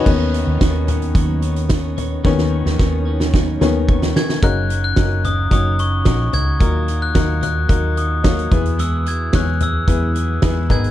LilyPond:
<<
  \new Staff \with { instrumentName = "Glockenspiel" } { \time 4/4 \key b \major \tempo 4 = 110 r1 | r2. r8 gis'''8 | fis'''8. fis'''8. dis'''8 dis'''8 cis'''8 cis'''8 gis'''8~ | gis'''8. fis'''8. fis'''4 dis'''4 r8 |
e'''8 gis'''8 fis'''8 e'''2 gis'''8 | }
  \new Staff \with { instrumentName = "Clean electric guitar" } { \time 4/4 \key b \major <dis fis b cis' dis' cis''>8 <b cis' dis' cis''>8 <b cis' dis' cis''>8 <b cis' dis' cis''>8 <dis fis b cis' dis' cis''>8 <b cis' dis' cis''>8 <b cis' dis' cis''>8 <b cis' dis' cis''>8 | <dis fis b cis' dis' cis''>8 <b cis' dis' cis''>8 <b cis' dis' cis''>8 <b cis' dis' cis''>8 <dis fis b cis' dis' cis''>8 <b cis' dis' cis''>8 <b cis' dis' cis''>8 <b cis' dis' cis''>8 | <fis ais cis' dis' ais'>8 <cis' dis' ais'>8 <ais cis' dis' ais'>8 <cis' dis' ais'>8 <fis ais cis' dis' ais'>8 <cis' dis' ais'>8 <ais cis' dis' ais'>8 <cis' dis' ais'>8 | <dis fis dis' fis' ais'>8 <dis' fis' ais'>8 <fis dis' fis' ais'>8 <dis' fis' ais'>8 <dis fis dis' fis' ais'>8 <dis' fis' ais'>8 <fis dis' fis' ais'>8 <b e' gis'>8 |
<e gis b e' gis'>8 <b e' gis'>8 <gis b e' gis'>8 <b e' gis'>8 <e gis b e' gis'>8 <b e' gis'>8 <gis b e' gis'>8 <gis b dis' gis'>8 | }
  \new Staff \with { instrumentName = "Tonewheel organ" } { \time 4/4 \key b \major <b dis' cis''>1~ | <b dis' cis''>1 | r1 | r1 |
r1 | }
  \new Staff \with { instrumentName = "Upright piano" } { \time 4/4 \key b \major r1 | r1 | <cis' dis' fis' ais'>4 <cis' dis' fis' ais'>4 <cis' dis' fis' cis''>4 <cis' dis' fis' cis''>4 | <ais dis' fis' ais'>4 <ais dis' fis' ais'>4 <ais dis' fis' ais'>4 <ais dis' fis' cis''>8 <b e' gis' b'>8~ |
<b e' gis' b'>8. r16 <b e' gis' cis''>4 <b e' gis' b'>4 <b e' gis' b'>8 <b dis' gis' b'>8 | }
  \new Staff \with { instrumentName = "Upright piano" } { \clef bass \time 4/4 \key b \major <dis b cis'>4. r2 r8 | <dis b cis'>8 r2 <dis b cis'>8 r4 | cis4. r2 r8 | ais,4. r2 b,8~ |
b,4 r2 r8 <gis, dis>8 | }
  \new Staff \with { instrumentName = "Fingered electric bass" } { \clef bass \time 4/4 \key b \major dis,8. dis,16 dis,4 dis,2 | dis,8. dis,16 dis,4. dis,4 r8 | fis,,4 fis,,4 fis,,4 ais,,8 cis,8 | dis,4 dis,4 dis,4. e,8~ |
e,4 e,4 e,4 e,8 gis,,8 | }
  \new DrumStaff \with { instrumentName = "Drums" } \drummode { \time 4/4 <cymc bd>8 hh8 <hh bd sn>8 <hh tomfh>16 hh16 <hh bd>8 hh16 hh16 <hh bd sn>8 <hh tomfh>8 | <bd sn>16 sn8 sn16 <bd sn>8. sn16 <bd sn>8 sn8 bd16 sn16 sn16 sn16 | <hh bd>8 hh8 <hh bd sn>8 <hh tomfh>8 <hh bd>8 hh8 <hh bd sn>8 <hh tomfh>8 | <hh bd>8 hh8 <hh bd sn>8 <hh tomfh>8 <hh bd>8 hh8 <hh bd sn>16 hh16 <hh bd tomfh>16 hh16 |
hh8 hh8 <hh bd sn>8 <hh tomfh>8 <hh bd>8 hh8 <hh bd sn>8 <hh bd tomfh>16 hh16 | }
>>